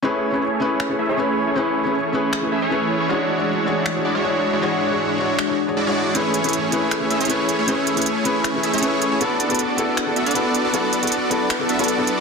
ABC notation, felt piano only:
X:1
M:4/4
L:1/16
Q:1/4=157
K:A
V:1 name="Felt piano"
[CEGB]3 [CEGB] z2 [CEGB]3 [CEGB]2 z [CEGB]4 | [CEGB]3 [CEGB] z2 [CEGB]3 [CEGB]2 z [CEGB]4 | [DFGc]3 [DFGc] z2 [DFGc]3 [DFGc]2 z [DFGc]4 | [DFGc]3 [DFGc] z2 [DFGc]3 [DFGc]2 [DFGc] z [DFGc]3 |
[CEGB]3 [CEGB] z2 [CEGB]3 [CEGB]2 z [CEGB]4 | [CEGB]3 [CEGB] z2 [CEGB]3 [CEGB]2 z [CEGB]4 | [B,EFA]3 [B,EFA] z2 [B,EFA]3 [B,EFA]2 z [B,EFA]4 | [B,EFA]3 [B,EFA] z2 [B,EFA]3 [B,EFA]2 [B,EFA] z [B,EFA]3 |]